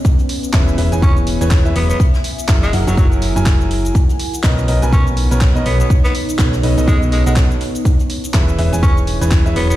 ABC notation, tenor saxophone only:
X:1
M:4/4
L:1/16
Q:"Swing 16ths" 1/4=123
K:B
V:1 name="Tenor saxophone"
z8 C z4 z B, B, | z4 z G, z F, F, z6 z | z8 C z4 z B, B, | z B, z6 G, z G, G, z4 |
z8 C z4 z B, B, |]